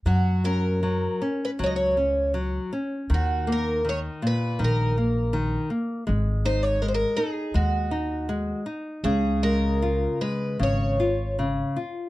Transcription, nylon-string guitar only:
X:1
M:4/4
L:1/8
Q:1/4=80
K:F#
V:1 name="Nylon-string guitar" clef=bass
F, C F, C F, C F, C | D, A, D, A,, D, A, D, A, | G, D G, D G, D G, D | C, G, E G, C, E C, E |]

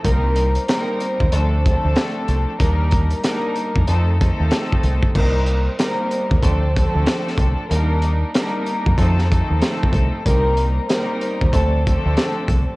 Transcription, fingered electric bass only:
X:1
M:4/4
L:1/16
Q:"Swing 16ths" 1/4=94
K:Cdor
V:1 name="Fingered electric bass" clef=bass
C,,4 z3 E,, D,,3 D,, z2 C,, z | E,,4 z3 F,, F,,3 E,, z2 C,, z | C,,4 z3 E,, D,,3 D,, z2 C,, z | E,,4 z3 F,, F,,3 E,, z2 C,, z |
C,,4 z3 E,, D,,3 D,, z2 C,, z |]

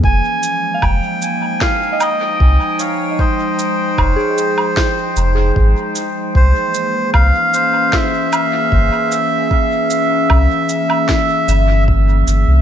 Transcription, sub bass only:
X:1
M:4/4
L:1/16
Q:1/4=76
K:Fm
V:1 name="Sub bass" clef=bass
F,,, z3 F,,, z6 z C,, z3 | z4 F,,, z4 z F,,,2 A,,, z3 | C,, z3 C,, z6 z G,,, z3 | z4 C,, z4 z G,,,4 G,,, C,, |]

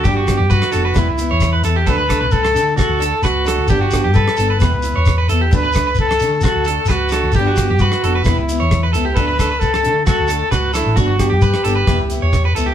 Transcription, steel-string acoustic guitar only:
X:1
M:4/4
L:1/8
Q:1/4=132
K:D
V:1 name="Steel-string acoustic guitar"
[F,B,D] [B,D] z [B,D] [G,B,E] [B,E] z [B,E] | [F,A,D] [A,D] z [A,D] z [A,D] z [A,D] | [F,B,D] [B,D] z [B,D] [G,B,E] [B,E] z [B,E] | [F,A,D] [A,D] z [A,D] z [A,D] z [A,D] |
[F,B,D] [B,D] z [B,D] [G,B,E] [B,E] z [B,E] | [F,A,D] [A,D] z [A,D] z [A,D] z [A,D] | [F,B,D] [B,D] z [B,D] [G,B,E] [B,E] z [B,E] |]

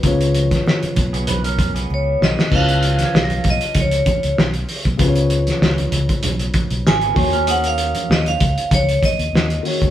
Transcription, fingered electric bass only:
X:1
M:4/4
L:1/16
Q:"Swing 16ths" 1/4=97
K:C#mix
V:1 name="Fingered electric bass" clef=bass
C,,4 z2 B,,,6 C,,2 B,,, z | C,,4 B,,,2 B,,, z C,,2 z C,, B,,,2 z B,,, | C,,4 C,,2 C,, z B,,,2 z B,,, G,,,2 D,,2- | D,,4 D,,2 C,, z C,,2 z D,, D,,2 z C,, |]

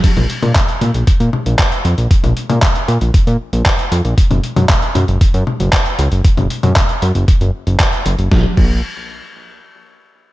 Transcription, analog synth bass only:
X:1
M:4/4
L:1/16
Q:1/4=116
K:Bbm
V:1 name="Analog synth bass" clef=bass
z B,,, z B,, z2 B,, B,,, z B,, z B,,, z2 F,, B,,, | z B,,, z B,, z2 B,, B,,, z B,, z B,,, z2 F,, B,,, | z G,,, z G,, z2 G,, G,,, z G,, z G,,, z2 D,, G,,, | z G,,, z G,, z2 G,, G,,, z G,,, z G,,, z2 G,,, G,,, |
B,,, z B,,,2 z12 |]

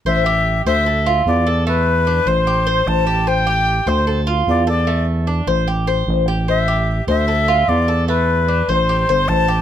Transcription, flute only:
X:1
M:4/4
L:1/8
Q:1/4=150
K:Am
V:1 name="Flute"
e3 e3 d2 | B3 c3 a2 | g3 c2 z d d- | d z6 z |
e3 e3 d2 | B3 c3 a2 |]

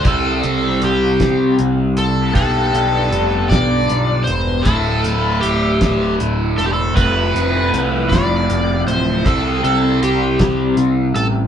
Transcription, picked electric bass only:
X:1
M:6/8
L:1/8
Q:3/8=52
K:C
V:1 name="Picked electric bass" clef=bass
C,, C,, C,, C,, C,, C,, | B,,, B,,, F,,, B,,, B,,, E,,, | D,,, D,,, D,,, D,,, D,,, E,,, | F,,, F,,, C,, F,,, F,,, D,,, |
C,, C,, C,, C,, C,, A,,, |]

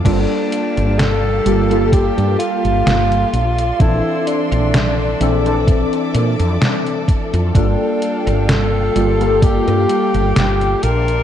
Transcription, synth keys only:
X:1
M:4/4
L:1/16
Q:"Swing 16ths" 1/4=64
K:Gdor
V:1 name="Synth keys"
[G,B,FA]6 [G,B,FG] [G,B,FA]6- [G,B,FA] z2 | [E,CDA]6 [E,CDA] [E,CDA]8- [E,CDA] | [G,B,FA]6 [G,B,FG] [G,B,FA]6- [G,B,FA] z2 |]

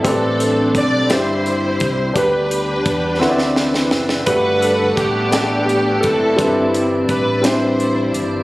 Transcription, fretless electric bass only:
X:1
M:6/8
L:1/8
Q:3/8=57
K:G
V:1 name="Fretless electric bass" clef=bass
A,,,2 B,,, G,,,2 C,, | D,,2 E,, D,,2 F,,, | G,,,2 A,,,3 F,,, | G,,,2 A,,,3 G,,, |]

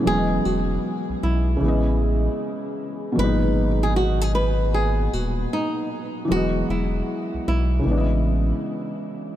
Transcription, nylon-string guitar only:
X:1
M:4/4
L:1/16
Q:"Swing 16ths" 1/4=77
K:G#m
V:1 name="Nylon-string guitar"
G2 F4 E6 z4 | B3 G F G B2 G2 F2 D2 z2 | F2 E4 E6 z4 |]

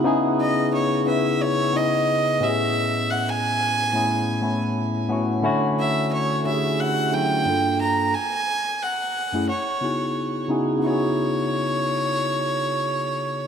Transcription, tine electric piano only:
X:1
M:4/4
L:1/16
Q:"Swing 16ths" 1/4=89
K:C#m
V:1 name="Tine electric piano"
[C,B,DEG]6 [C,B,CEB]4 [C,B,DEG]4 [A,,B,CE=G^G]2- | [A,,B,CE=G^G]6 z [A,,B,CEG]3 [A,,B,CEB]4 [A,,B,CEF]2 | [=D,A,CEF]6 [D,A,CE=G^G]4 [D,F,A,CE]2 [=G,,_B,=D=FA]4 | z6 z [F,,A,CEG] z2 [C,B,DEFG]4 [C,B,DEFG]2 |
[C,B,DEFG]16 |]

